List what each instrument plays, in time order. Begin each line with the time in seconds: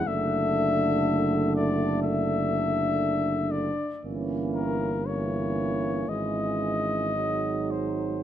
0.06 tuba F#1, euphonium D3 A3, french horn section D4, flugelhorn E5
1.56 flugelhorn D5
2.03 flugelhorn E5
3.51 flugelhorn D5
4.03 tuba G1, euphonium E3 A#3, french horn section C#4
4.55 flugelhorn A#4
5.07 euphonium E3 A#3, french horn section C#4, flugelhorn C#5
6.08 tuba G#1, euphonium E3 G#3, french horn section C#4, flugelhorn D#5
7.14 euphonium F#3 G#3, french horn section D#4
7.71 flugelhorn C5